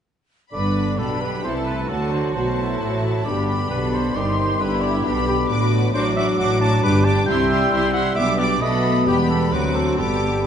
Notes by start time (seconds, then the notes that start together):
0.52 G1 G2 D3 B3 D4 B4 D5 B5
0.99 B1 B2 G4 A4 B5
1.22 B4
1.44 C2 C3 E3 A3 E4 A4 C5 A5
1.66 B4
1.89 D2 D3 F#3 A3 F#4 A4 A5
2.11 C5
2.34 B1 B2 A3 F#4 C5 A5
2.58 E4
2.81 A1 A2
3.25 G1 G2 D3 B3 D4 G4 D5 B5
3.48 B5
3.70 B1 B2 B3 D4 G4 A4 B4
3.94 C5
4.15 G1 G2 D#3 C4 D#4 G4 D5 C6
4.38 C5
4.59 G1 G2 D3 B3 D4 E4 G4 B4 B5
4.82 D5
5.04 B1 B2 B3 D4 D5 B5
5.28 G4
5.49 A1 A2 F#4 B4 D6
5.94 A1 A2 F#3 D4 F#4 C5 D6
6.16 D4 F#4 E5 D6
6.38 A1 A2 D4 F#4 F#5 D6
6.61 D4 F#4 A5 D6
6.83 G1 G2 G3 D4 G4 B4 D6
7.05 D4 G4 A5 D6
7.26 C2 C3 E4 G4 G5 C6 E6
7.50 E4 G4 C6
7.72 C2 C3 E4 G4 C6
7.93 E4 G4 F#5 C6
8.15 B1 B2 B3 D4 G4 E5 D6
8.38 B3 G4 D5 D6
8.61 B1 B2 A3 B3 A4 D#5 B5
9.06 E1 E2 G3 B3 G4 B5
9.30 A4
9.52 D2 F#3 C4 F#4 B4 C6 D6
9.76 A4
9.98 G1 G2 G3 B3 G4 A4 B5 D6